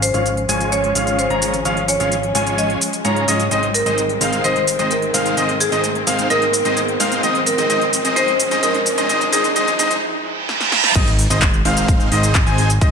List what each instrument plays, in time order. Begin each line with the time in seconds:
Already playing: analog synth bass G#1, string section F3 G#3 C#4, riser
0.02 marimba C5, open hi-hat, shaker
0.14 analog synth bass G#1, supersaw synth G#3 C#4 F4 C#5 F5, grand piano F5, closed hi-hat, shaker
0.26 closed hi-hat, shaker
0.37 closed hi-hat
0.49 analog synth bass G#1, supersaw synth G#3 C#4 F4 C#5 G#5, grand piano G#5, open hi-hat, shaker
0.61 closed hi-hat, shaker
0.72 marimba C#5, closed hi-hat, shaker
0.84 closed hi-hat
0.95 analog synth bass G#1, supersaw synth G#3 C#4 F4 C#5 F5, grand piano F5, open hi-hat, shaker
1.07 closed hi-hat, shaker
1.19 marimba C5, closed hi-hat, shaker
1.30 analog synth bass G#1, supersaw synth G#3 C#4 F4 C#5 A#5, grand piano A#5, closed hi-hat
1.42 open hi-hat, shaker
1.54 closed hi-hat, shaker
1.65 analog synth bass G#1, supersaw synth G#3 C#4 F4 C#5 F5, grand piano F5, closed hi-hat, shaker
1.77 closed hi-hat
1.88 marimba C#5, open hi-hat, shaker
2.00 analog synth bass G#1, supersaw synth G#3 C#4 F4 C#5 F5, grand piano F5, closed hi-hat, shaker
2.12 closed hi-hat, shaker
2.23 closed hi-hat
2.35 analog synth bass G#1, supersaw synth G#3 C#4 F4 C#5 G#5, grand piano G#5, open hi-hat, shaker
2.47 closed hi-hat, shaker
2.58 marimba D#5, closed hi-hat, shaker
2.70 closed hi-hat
2.81 open hi-hat, shaker
2.93 closed hi-hat, shaker
3.05 analog synth bass G#2, supersaw synth G#3 C#4 F4 C#5 A#5, marimba C#5, grand piano A#5, closed hi-hat, shaker
3.16 closed hi-hat
3.28 analog synth bass G#2, supersaw synth G#3 C#4 F4 C#5 D#5, grand piano D#5, open hi-hat, shaker
3.40 closed hi-hat, shaker
3.51 analog synth bass G#1, string section D#3 C4, supersaw synth G#3 C4 D#4 C5 D#5, grand piano D#5, closed hi-hat, shaker
3.63 closed hi-hat
3.74 marimba A#4, open hi-hat, shaker
3.86 analog synth bass G#1, supersaw synth G#3 C4 D#4 C5 D#5, grand piano D#5, closed hi-hat, shaker
3.98 closed hi-hat, shaker
4.09 closed hi-hat
4.21 analog synth bass G#1, supersaw synth G#3 C4 D#4 C5 F5, grand piano F5, open hi-hat, shaker
4.33 closed hi-hat, shaker
4.44 analog synth bass G#1, supersaw synth G#3 C4 D#4 C5 D#5, marimba C5, grand piano D#5, closed hi-hat, shaker
4.56 closed hi-hat
4.67 open hi-hat, shaker
4.79 analog synth bass G#1, supersaw synth G#3 C4 D#4 C5 D#5, grand piano D#5, closed hi-hat, shaker
4.91 marimba A#4, closed hi-hat, shaker
5.02 closed hi-hat
5.14 analog synth bass G#1, supersaw synth G#3 C4 D#4 C5 F5, grand piano F5, open hi-hat, shaker
5.26 closed hi-hat, shaker
5.37 analog synth bass G#1, supersaw synth G#3 C4 D#4 C5 D#5, grand piano D#5, closed hi-hat, shaker
5.49 closed hi-hat
5.60 marimba G#4, open hi-hat, shaker
5.72 analog synth bass G#1, supersaw synth G#3 C4 D#4 C5 D#5, grand piano D#5, closed hi-hat, shaker
5.84 closed hi-hat, shaker
5.95 closed hi-hat
6.07 analog synth bass G#1, supersaw synth G#3 C4 D#4 C5 F5, grand piano F5, open hi-hat, shaker
6.19 closed hi-hat, shaker
6.30 analog synth bass G#1, supersaw synth G#3 C4 D#4 C5 D#5, marimba A#4, grand piano D#5, closed hi-hat, shaker
6.42 closed hi-hat
6.54 open hi-hat, shaker
6.65 analog synth bass G#1, supersaw synth G#3 C4 D#4 C5 D#5, grand piano D#5, closed hi-hat, shaker
6.77 marimba G#4, closed hi-hat, shaker
6.88 closed hi-hat
7.00 analog synth bass G#2, supersaw synth G#3 C4 D#4 C5 F5, grand piano F5, open hi-hat, shaker
7.12 closed hi-hat, shaker
7.23 analog synth bass G#1, string section F3 G#3, supersaw synth G#3 C4 D#4 C5 D#5, grand piano D#5, closed hi-hat, shaker
7.35 closed hi-hat
7.47 marimba A#4, open hi-hat, shaker
7.58 analog synth bass G#1, supersaw synth G#3 C4 D#4 C5 D#5, grand piano D#5, closed hi-hat, shaker
7.70 analog synth bass G#1, supersaw synth G#3 C4 D#4 C5 D#5, grand piano D#5, closed hi-hat, shaker
7.81 closed hi-hat
7.93 open hi-hat, shaker
8.05 analog synth bass G#1, supersaw synth G#3 C4 D#4 C5 D#5, grand piano D#5, closed hi-hat, shaker
8.16 analog synth bass G#1, supersaw synth G#3 C4 D#4 C5 D#5, marimba C5, grand piano D#5, closed hi-hat, shaker
8.28 closed hi-hat
8.40 open hi-hat, shaker
8.51 analog synth bass G#1, supersaw synth G#3 C4 D#4 C5 D#5, grand piano D#5, closed hi-hat, shaker
8.63 analog synth bass G#1, supersaw synth G#3 C4 D#4 C5 D#5, marimba A#4, grand piano D#5, closed hi-hat, shaker
8.74 closed hi-hat
8.86 open hi-hat, shaker
8.98 analog synth bass G#1, supersaw synth G#3 C4 D#4 C5 D#5, grand piano D#5, closed hi-hat, shaker
9.09 analog synth bass G#1, supersaw synth G#3 C4 D#4 C5 D#5, grand piano D#5, closed hi-hat, shaker
9.21 closed hi-hat, shaker
9.33 analog synth bass G#1, supersaw synth G#3 C4 D#4 C5 D#5, marimba G#4, grand piano D#5, open hi-hat, shaker
9.44 closed hi-hat, shaker
9.56 analog synth bass G#1, supersaw synth G#3 C4 D#4 C5 D#5, grand piano D#5, closed hi-hat, shaker
9.68 closed hi-hat, shaker
9.79 analog synth bass G#1, supersaw synth G#3 C4 D#4 C5 D#5, grand piano D#5, open hi-hat, shaker
9.91 closed hi-hat, shaker
10.02 reverse cymbal
10.49 snare
10.61 snare
10.72 snare
10.84 snare
10.95 analog synth bass G#1, supersaw synth G#3 C4 D#4 C5 D#5, grand piano D#5, kick, closed hi-hat, crash, sub drop, shaker
11.07 closed hi-hat, shaker
11.19 open hi-hat
11.30 analog synth bass G#1, supersaw synth G#3 C4 D#4 C5 D#5, grand piano D#5, closed hi-hat, shaker
11.42 kick, clap, closed hi-hat, shaker
11.54 closed hi-hat, shaker
11.65 analog synth bass G#1, supersaw synth G#3 C4 D#4 C5 F5, grand piano F5, open hi-hat
11.77 closed hi-hat, shaker
11.88 kick, closed hi-hat, shaker
12.00 closed hi-hat, shaker
12.12 analog synth bass G#1, supersaw synth G#3 C4 D#4 C5 D#5, grand piano D#5, open hi-hat
12.23 closed hi-hat, shaker
12.35 kick, clap, closed hi-hat, shaker
12.47 analog synth bass G#1, supersaw synth G#3 C4 D#4 C5 G#5, grand piano G#5, closed hi-hat, shaker
12.58 open hi-hat
12.70 closed hi-hat, shaker
12.81 analog synth bass G#1, supersaw synth G#3 C4 D#4 C5 D#5, grand piano D#5, kick, closed hi-hat, shaker